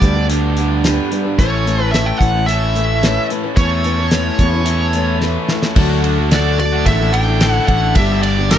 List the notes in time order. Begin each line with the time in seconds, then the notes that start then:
Already playing: G2 D3 G3 B3 D4 G4 D5
0.01 D2 G3 D4 G4 B4, kick, closed hi-hat
0.16 D4 G4 B4
0.28 G2 D3 G3 B3 D4 G4, closed hi-hat
0.57 G3 D4 G4 B4, closed hi-hat
0.84 G3 D4 G4 B4, snare, closed hi-hat
1.12 G3 D4 G4 B4, closed hi-hat
1.24 D4 G4 B4
1.37 A1 A2 E3 A3 C#4 E4 B4 C#5, kick, closed hi-hat
1.41 A4
1.66 A3 C#4 E4 B4, closed hi-hat
1.80 C#4 E4 B4
1.92 A3 C#4 E4 B4 E5, snare, closed hi-hat
2.06 G5
2.19 A1 A3 C#4 E4 B4 F#5, kick, closed hi-hat
2.34 C#4 E4 B4
2.46 A2 E3 A3 C#4 A4 E5, closed hi-hat
2.76 A3 C#4 E4 B4, closed hi-hat
3.03 A3 C#4 E4 B4, snare, closed hi-hat
3.30 A3 C#4 E4 B4, closed hi-hat
3.44 C#4 E4 B4
3.55 E2 A2 E3 A3 C#4 E4 C#5, kick, closed hi-hat
3.59 A4 B4
3.84 A3 C#4 E4 B4, closed hi-hat
3.99 C#4 E4 B4
4.11 A3 C#4 E4 B4, snare, closed hi-hat
4.39 E2 A3 C#4 E4, kick, closed hi-hat
4.43 B4
4.53 C#4 E4 B4
4.64 A2 E3 A3 C#4 A4, closed hi-hat
4.93 A3 C#4 E4 B4, closed hi-hat
5.21 A3 C#4 E4 B4, snare
5.48 A3 C#4 E4 B4, snare
5.62 C#4 E4 B4, snare
5.75 D2 D3 F#3 A3 D4 F#4 A4, kick, crash
5.89 A3 D4 F#4
6.02 D3 A3 D4 F#4, ride
6.18 A3 F#4 A4
6.30 D3 F#3 A3 D4 F#4 A4 D5, snare, ride
6.59 F#3 A3 F#4 A4 D5, muted overdriven electric guitar stroke, ride
6.72 A3 D4 F#4
6.85 A1 A2 D3 E3 A3 D4 E4 A4 E5, kick, ride
6.99 E3 A3 D4 E4 A4
7.12 D3 E3 A3 D4 E4 A4 G5, ride
7.16 E4
7.28 E3 A3 E4 A4
7.39 A2 D3 E3 A3 D4 E4, snare, ride
7.43 E4 A4
7.51 E4 F#5
7.56 A3 D4
7.66 A1 D3 E3 A3 D4 E4 F#5, kick, ride
7.70 A3 E4 A4
7.80 A3 D4 E4
7.94 G1 G2 D3 G3 B3 D4 G4 E5, kick, ride
7.98 G2 D3 G3 B3 D4 G4
8.08 G3 B3 D4 G4
8.21 G3 B3 D4 G4 D5, ride
8.39 G3 B3 D4 G4
8.48 G2 D3 G3 B3 D4 G4 B4, snare, ride